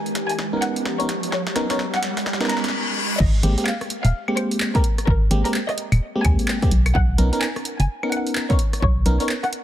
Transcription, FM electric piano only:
0.53 0.96 B3 medium
0.53 0.96 C#4 medium
0.53 0.96 D#4 medium
0.53 0.96 A#4 medium
1.00 1.07 B3 medium
1.00 1.07 C#4 medium
1.00 1.07 D#4 medium
1.00 1.07 A#4 medium
1.56 1.67 B3 medium
1.56 1.67 C#4 medium
1.56 1.67 D#4 medium
1.56 1.67 A#4 loud
1.70 1.84 B3 medium
1.70 1.84 C#4 medium
1.70 1.84 D#4 medium
1.70 1.84 A#4 medium
2.40 2.73 B3 medium
2.40 2.73 C#4 medium
2.40 2.73 D#4 medium
2.40 2.73 A#4 medium
3.43 3.54 G#3 medium
3.43 3.54 A#3 medium
3.43 3.54 C4 medium
3.43 3.54 G4 loud
3.58 3.71 G#3 medium
3.58 3.71 A#3 medium
3.58 3.71 C4 medium
3.58 3.71 G4 medium
4.28 4.71 G#3 medium
4.28 4.71 A#3 medium
4.28 4.71 C4 medium
4.28 4.71 G4 medium
4.75 4.82 G#3 medium
4.75 4.82 A#3 medium
4.75 4.82 C4 medium
4.75 4.82 G4 medium
5.31 5.42 G#3 medium
5.31 5.42 A#3 medium
5.31 5.42 C4 medium
5.31 5.42 G4 loud
5.45 5.59 G#3 medium
5.45 5.59 A#3 medium
5.45 5.59 C4 medium
5.45 5.59 G4 loud
6.16 6.59 G#3 medium
6.16 6.59 A#3 medium
6.16 6.59 C4 medium
6.16 6.59 G4 medium
6.62 6.70 G#3 medium
6.62 6.70 A#3 medium
6.62 6.70 C4 medium
6.62 6.70 G4 loud
7.18 7.29 B3 medium
7.18 7.29 C#4 medium
7.18 7.29 D#4 medium
7.18 7.29 A#4 loud
7.33 7.46 B3 medium
7.33 7.46 C#4 medium
7.33 7.46 D#4 medium
7.33 7.46 A#4 loud
8.03 8.46 B3 medium
8.03 8.47 C#4 medium
8.03 8.47 D#4 medium
8.03 8.46 A#4 medium
8.50 8.57 B3 medium
8.50 8.57 C#4 medium
8.50 8.57 D#4 medium
8.50 8.57 A#4 loud
9.06 9.17 B3 medium
9.06 9.17 C#4 medium
9.06 9.17 D#4 medium
9.06 9.17 A#4 loud
9.20 9.34 B3 medium
9.20 9.34 C#4 medium
9.20 9.34 D#4 medium
9.20 9.34 A#4 medium

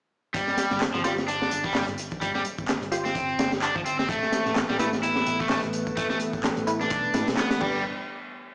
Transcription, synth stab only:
1.04 1.17 F4 medium
1.04 1.17 G4 medium
1.04 1.17 C5 loud
2.92 3.05 F4 medium
2.92 3.05 G4 medium
2.92 3.05 C5 loud
4.79 4.92 E4 loud
4.79 4.92 A4 medium
4.79 4.92 B4 loud
6.67 6.80 E4 medium
6.67 6.80 A4 medium
6.67 6.80 B4 loud
7.14 7.27 E4 medium
7.14 7.27 A4 medium
7.14 7.27 B4 medium
7.61 7.79 D4 medium
7.61 7.79 G4 medium
7.61 7.79 B4 loud

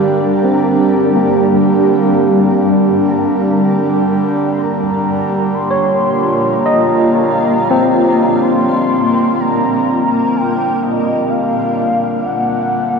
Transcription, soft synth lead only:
0.00 0.80 F5 loud
0.81 1.78 G5 loud
1.77 2.72 F5 loud
2.71 3.09 D5 medium
3.08 3.20 G5 medium
3.18 3.65 F5 medium
3.64 4.53 G5 loud
4.52 4.63 C6 medium
4.62 5.56 A#5 loud
5.54 6.54 C6 loud
6.52 8.44 A#5 loud
8.42 9.42 C6 loud
9.40 10.37 A#5 loud
10.36 10.84 G5 loud
10.82 11.31 D#5 medium
11.30 12.24 F5 medium
12.25 12.99 F#5 medium

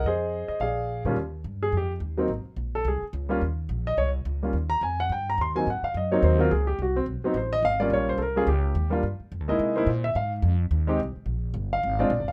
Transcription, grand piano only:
0.06 0.58 G#4 medium
0.06 0.58 C5 medium
0.06 0.47 D#5 medium
0.48 0.59 D#5 medium
0.61 1.14 G#4 medium
0.61 1.14 D5 medium
0.61 1.02 F5 medium
1.05 1.16 D#2 medium
1.05 1.16 G3 medium
1.05 1.16 A#3 medium
1.05 1.16 C#4 medium
1.05 1.17 F4 medium
1.63 1.73 G#4 medium
1.77 1.91 G4 medium
2.17 2.28 F#3 medium
2.17 2.28 A#3 medium
2.17 2.29 C4 medium
2.17 2.29 D#4 medium
2.75 2.86 A4 medium
2.88 3.03 G#4 medium
3.29 3.40 G3 medium
3.29 3.40 A#3 medium
3.29 3.41 C#4 medium
3.29 3.41 F4 medium
3.87 3.98 D#5 medium
3.98 4.08 C#5 medium
4.43 4.53 G3 medium
4.43 4.53 A#3 soft
4.43 4.54 C#4 medium
4.43 4.54 F4 medium
4.70 4.81 A#5 loud
4.83 4.99 G#5 medium
5.00 5.11 F#5 medium
5.12 5.27 G5 medium
5.30 5.39 A#5 medium
5.41 5.56 C6 medium
5.55 5.66 F#3 medium
5.55 5.66 A#3 medium
5.55 5.66 C4 medium
5.55 5.67 D#4 medium
5.55 5.67 G#5 medium
5.70 5.84 F#5 medium
5.84 5.95 F5 medium
5.97 6.12 D#5 medium
6.12 6.37 F#3 medium
6.12 6.38 A#3 medium
6.12 6.38 C4 medium
6.12 6.39 D#4 medium
6.12 6.23 C#5 medium
6.24 6.39 C5 medium
6.39 6.49 F#3 medium
6.39 6.50 A#3 medium
6.39 6.50 C4 medium
6.39 6.50 F4 medium
6.39 6.51 A#4 medium
6.51 6.67 G#4 medium
6.67 6.78 G4 medium
6.82 6.96 F#4 medium
6.96 7.03 C4 medium
7.24 7.34 F#3 medium
7.24 7.35 B3 medium
7.24 7.35 C4 medium
7.24 7.35 D#4 medium
7.37 7.52 C5 medium
7.53 7.63 D#5 loud
7.65 7.80 F5 loud
7.80 8.17 G3 medium
7.80 8.17 A#3 medium
7.80 8.18 C#4 medium
7.80 8.18 F4 medium
7.80 7.91 D5 medium
7.93 8.08 C#5 medium
8.09 8.20 C5 medium
8.18 8.20 A4 medium
8.18 8.37 A#4 medium
8.36 8.46 G3 medium
8.36 8.46 A#3 medium
8.36 8.47 C#4 medium
8.36 8.47 F4 medium
8.36 8.48 G#4 medium
8.48 8.89 G4 medium
8.90 9.01 G3 medium
8.90 9.02 A#3 medium
8.90 9.02 D4 medium
8.90 9.02 F4 medium
9.48 9.74 G#3 medium
9.48 9.74 A#3 medium
9.48 9.75 D#4 medium
9.48 9.75 E4 medium
9.48 9.75 D#5 medium
9.76 9.86 G#3 medium
9.76 9.86 A#3 medium
9.76 9.87 D#4 medium
9.76 9.87 E4 medium
9.76 10.02 C5 medium
10.04 10.15 E5 medium
10.16 10.32 F5 medium
10.87 10.98 G#3 medium
10.87 10.98 C4 medium
10.87 10.98 D#4 medium
10.87 10.99 G4 medium
11.73 11.98 F5 medium
11.99 12.09 G#3 medium
11.99 12.10 C4 medium
11.99 12.10 D4 medium
11.99 12.11 F4 medium
11.99 12.26 D5 medium
12.28 12.32 F5 medium

